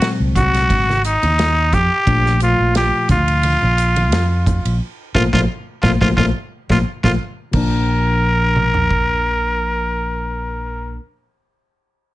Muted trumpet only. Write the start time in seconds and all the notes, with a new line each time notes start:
0.36 F#4
1.06 D#4
1.74 G4
2.43 F4
2.77 G4
3.11 F4
5.15 F4
5.33 F4
5.82 F4
6.01 F4
6.17 F4
6.71 F4
7.04 F4
7.54 A#4